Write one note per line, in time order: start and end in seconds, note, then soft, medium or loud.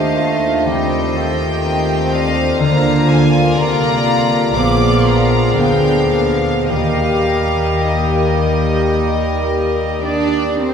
0.00 2.56 D#2 soft
0.00 0.64 D#3 soft
0.00 2.56 D#3 medium
0.00 0.15 A3 soft
0.00 2.45 A3 soft
0.00 1.63 C4 soft
0.00 0.70 D4 soft
0.00 1.56 D#4 soft
0.00 2.45 F4 soft
0.00 0.16 G4 soft
0.00 1.14 A4 soft
0.00 0.64 C5 soft
0.00 1.62 D#5 soft
0.00 0.66 F5 medium
0.16 0.67 A3 medium
0.16 2.12 F4 soft
0.16 0.67 F4 medium
0.65 2.63 D#3 soft
0.65 1.18 G3 soft
0.65 1.40 C4 soft
0.65 1.17 D#4 soft
0.65 1.63 C5 soft
0.65 2.11 G5 medium
1.15 1.48 F3 medium
1.15 2.60 G4 medium
1.15 2.63 A4 soft
1.63 2.15 D#3 soft
1.63 2.63 C4 soft
1.63 2.58 C4 medium
1.63 2.62 C4 medium
1.63 3.52 C5 medium
1.63 2.10 D#5 medium
2.11 3.56 D3 medium
2.11 4.05 F4 soft
2.11 2.58 D#5 medium
2.11 2.60 F5 medium
2.59 3.55 D2 medium
2.59 3.55 D3 medium
2.59 4.59 D3 medium
2.59 4.55 A#3 medium
2.59 3.54 A#3 medium
2.59 4.55 F4 medium
2.59 3.54 F4 medium
2.59 4.50 F5 medium
2.59 3.07 A#5 medium
3.08 5.06 A#4 soft
3.08 3.57 G#5 medium
3.55 4.53 C2 medium
3.55 4.53 C3 medium
3.55 4.57 D3 medium
3.55 7.45 A#3 soft
3.55 4.53 A#3 medium
3.55 4.52 F4 medium
3.55 4.52 D5 medium
3.55 4.55 A#5 medium
4.06 6.12 F4 soft
4.54 5.58 A#1 medium
4.54 6.73 A#2 medium
4.54 5.58 A#2 medium
4.54 6.69 F3 medium
4.54 5.57 A#3 medium
4.54 5.60 B3 medium
4.54 6.65 B3 medium
4.54 5.57 F4 medium
4.54 6.69 G#4 medium
4.54 5.55 D5 medium
4.54 6.64 F5 medium
4.54 5.06 D6 medium
5.07 8.39 A#4 soft
5.07 5.59 A#5 medium
5.57 6.66 D2 medium
5.57 6.66 D3 soft
5.57 6.73 G#3 soft
5.57 6.68 A#3 medium
5.57 6.69 B3 soft
5.57 6.69 D4 medium
5.57 6.67 A#4 medium
5.57 6.11 G5 medium
6.12 6.73 F4 soft
6.12 6.67 F5 medium
6.68 10.74 D#2 soft
6.68 10.04 D#3 medium
6.68 10.59 D#3 soft
6.68 10.74 G3 soft
6.68 10.74 A#3 soft
6.68 7.84 A#3 soft
6.68 10.74 A#3 soft
6.68 7.82 G4 soft
6.68 10.74 G4 soft
6.68 9.99 A#4 soft
6.68 9.99 D#5 soft
6.68 7.81 F5 medium
7.26 9.47 G4 soft
7.84 10.74 A#3 soft
7.84 10.02 D#4 soft
7.84 10.74 G4 soft
7.84 10.03 D#5 medium
8.41 10.58 A#4 soft
8.95 10.74 G3 soft
9.48 10.74 G4 soft
10.03 10.56 D4 medium
10.03 10.74 D#4 soft
10.03 10.56 D5 medium
10.59 10.74 C4 medium
10.59 10.74 A#4 soft
10.59 10.74 C5 soft